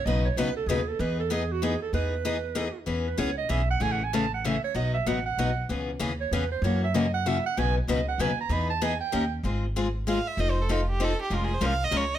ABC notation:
X:1
M:3/4
L:1/16
Q:"Swing" 1/4=192
K:E
V:1 name="Clarinet"
d2 c2 B2 A2 G2 A2 | B2 A2 G2 F2 G2 A2 | B12 | z2 B2 c2 d2 e2 f2 |
(3g2 f2 g2 a2 f2 e2 c2 | d2 e2 f2 f6 | z6 c2 B2 =c2 | c2 e2 d2 f2 e2 f2 |
g2 B2 d2 f2 g2 ^a2 | b2 a2 g2 =g4- g z | [K:Ab] z12 | z12 |
z12 |]
V:2 name="Violin"
z12 | z12 | z12 | z12 |
z12 | z12 | z12 | z12 |
z12 | z12 | [K:Ab] z8 f2 _f2 | (3e2 c2 =A2 F2 G2 A2 G2 |
(3F2 A2 c2 f2 e2 d2 e2 |]
V:3 name="Steel-string acoustic guitar"
[B,,C,F,B,DB]2 z2 [B,,C,F,B,DB]2 z2 [B,,C,F,B,DB]2 z2 | [E,B,DG]2 z2 [E,B,DG]2 z2 [E,B,DG]2 z2 | [E,B,DG]2 z2 [E,B,DG]2 z2 [E,B,DG]2 z2 | [E,B,CG]2 z2 [E,B,CG]2 z2 [E,B,CG]2 z2 |
[C,E,A,CG]2 z2 [C,E,A,CG]2 z2 [C,E,A,CG]2 z2 | [B,,F,B,DF]2 z2 [B,,F,B,DF]2 z2 [B,,F,B,DF]2 z2 | [C,E,B,CG]2 z2 [C,E,B,CG]2 z2 [C,E,B,CG]2 z2 | [C,E,^A,CF]2 z2 [C,E,A,CF]2 z2 [C,E,A,CF]2 z2 |
[B,,C,F,B,DB]2 z2 [B,,C,F,B,DB]2 z2 [B,,C,F,B,DB]2 z2 | [E,B,DG]2 z2 [E,B,DG]2 z2 [D,^A,C=G^A]2 z2 | [K:Ab] [A,CFA]2 z2 [A,CFA]2 z2 [A,CFA]2 z2 | [F,CE=A]2 z2 [F,CEA]2 z2 [F,CEA]2 z2 |
[F,A,DFB]2 z2 [F,A,DFB]2 z2 [F,A,DFB]2 z2 |]
V:4 name="Upright bass" clef=bass
B,,,4 C,,4 D,,4 | E,,12 | E,,12 | E,,4 C,,4 B,,,4 |
A,,,12 | B,,,4 A,,,4 B,,,4 | C,,4 D,,4 E,,4 | F,,12 |
B,,,4 C,,4 D,,4 | E,,8 D,,4 | [K:Ab] A,,,12 | F,,,12 |
F,,,4 C,,4 D,,4 |]